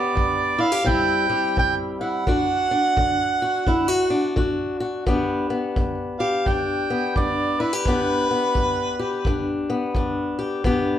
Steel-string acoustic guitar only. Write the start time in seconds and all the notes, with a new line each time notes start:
Already playing: G2 B3 D4 G4
0.15 G2
0.58 E4
0.72 G4
0.84 C3 G3 C4 E4
1.29 G3
1.58 C3
2.01 E4
2.27 D3 D4 F#4
2.71 D4
2.97 D3
3.42 F#4
3.67 D3 E4
3.88 F#4
4.10 D4
4.36 D3 F#4
4.80 F#4
5.06 G2 B3 D4 G4
5.50 B3
5.77 G2
6.20 G4
6.47 G2 D4
6.90 B3
7.16 G2 D4
7.60 E4
7.73 G4
7.87 G2 B3 D4 G4
8.31 B3
8.57 G2
8.99 G4
9.26 G2 D4
9.70 B3
9.96 G2 D4
10.39 G4
10.64 G2 B3 D4 G4